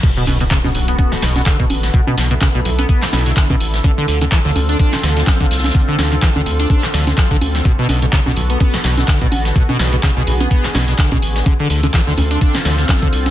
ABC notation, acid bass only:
X:1
M:4/4
L:1/16
Q:"Swing 16ths" 1/4=126
K:Bdor
V:1 name="Acid bass" clef=bass
B,, B,, B,, B,, C, B,, B,,, B, B, B,,, B,, B,, D, B,, z2 | B,, B,, z B,, C, B,, B,,, B, B, B,,, B,, B,, D, B,, z2 | D, D, z D, E, D, D,, D D D,, D, D, =F, D, z2 | D, D, D, D, E, D, D,, D D D,, D, D, =F, D, z2 |
B,, B,, B,, B,, C, B,, B,,, B, B, B,,, B,, B,, D, B,, z2 | B,, B,, B,, B,, C, B,, B,,, B, B, B,,, B,, B,, D, B,, z2 | D, D, D, D, E, D, D,, D D D,, D, D, =F, D, z2 |]